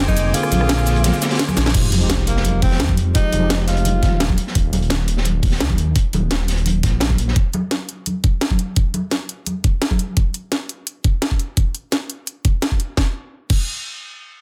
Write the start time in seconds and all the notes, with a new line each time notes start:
Already playing: D3 A#3 C4 G#4 C5 G#5 D6
0.00 F1
0.08 D#4, kick, high conga, shaker
0.17 closed hi-hat, shaker
0.33 D3 A#3 C4 F4 G#4, closed hi-hat, ride
0.43 cross-stick, shaker
0.51 A#1, closed hi-hat, high conga, shaker
0.58 D3 A#3 C4, cross-stick
0.63 G#4
0.69 snare, closed hi-hat, ride
0.78 cross-stick, shaker
0.86 snare, closed hi-hat, shaker
0.96 closed hi-hat
1.04 snare, closed hi-hat, ride, high conga
1.13 shaker
1.22 snare, closed hi-hat, shaker
1.31 snare, closed hi-hat
1.35 snare, closed hi-hat
1.39 snare, closed hi-hat, ride
1.48 cross-stick, high conga, shaker
1.57 A#1, snare, closed hi-hat, shaker
1.66 snare
1.73 F1 F3 G#3 D#4 G4, kick, closed hi-hat, crash, sub drop
1.92 closed hi-hat, high conga
1.99 F3 G#3 D#4, closed hi-hat
2.04 G4
2.10 snare, closed hi-hat
2.27 A#3, closed hi-hat
2.37 snare
2.45 closed hi-hat, high conga
2.62 C4, kick, closed hi-hat, open hi-hat
2.71 snare
2.80 F2, snare, closed hi-hat
2.89 kick, high conga
2.97 closed hi-hat
3.14 F3 G#3 D#4 G4, kick, closed hi-hat
3.32 F1, closed hi-hat, high conga
3.39 F3 G#3 D#4
3.44 G4
3.50 snare, closed hi-hat
3.67 F4, snare, closed hi-hat
3.77 closed hi-hat
3.85 closed hi-hat, high conga
4.03 D#1, kick, snare, closed hi-hat
4.20 snare, closed hi-hat
4.29 kick, high conga
4.38 closed hi-hat
4.47 snare
4.55 D#1, kick, closed hi-hat
4.73 closed hi-hat, high conga
4.82 closed hi-hat
4.90 snare, closed hi-hat
5.08 closed hi-hat
5.17 snare
5.25 closed hi-hat, high conga
5.42 kick, closed hi-hat, open hi-hat
5.51 snare
5.60 D#2, snare, closed hi-hat
5.70 kick, high conga
5.78 closed hi-hat
5.96 kick, closed hi-hat
6.13 D#1, closed hi-hat, high conga
6.31 snare, closed hi-hat
6.48 snare, closed hi-hat
6.57 closed hi-hat
6.66 closed hi-hat, high conga
6.83 A#1, kick, snare, closed hi-hat
7.00 snare, closed hi-hat
7.09 kick, high conga
7.18 A#1, closed hi-hat
7.28 snare
7.36 kick, closed hi-hat
7.53 closed hi-hat, high conga
7.71 snare, closed hi-hat
7.89 closed hi-hat
8.06 closed hi-hat, high conga
8.24 kick, closed hi-hat
8.41 snare, closed hi-hat
8.50 kick, high conga
8.59 closed hi-hat
8.76 kick, closed hi-hat
8.94 closed hi-hat, high conga
9.11 snare, closed hi-hat
9.29 closed hi-hat
9.47 closed hi-hat, high conga
9.64 kick, closed hi-hat
9.82 snare, closed hi-hat
9.91 kick, high conga
9.99 closed hi-hat
10.17 kick, closed hi-hat
10.34 closed hi-hat
10.52 snare, closed hi-hat
10.69 closed hi-hat
10.87 closed hi-hat
11.04 kick, closed hi-hat
11.22 snare, closed hi-hat
11.31 kick
11.39 closed hi-hat
11.57 kick, closed hi-hat
11.75 closed hi-hat
11.92 snare, closed hi-hat
12.10 closed hi-hat
12.27 closed hi-hat
12.45 kick, closed hi-hat
12.62 snare, closed hi-hat
12.72 kick
12.80 closed hi-hat
12.97 kick, snare
13.50 kick, crash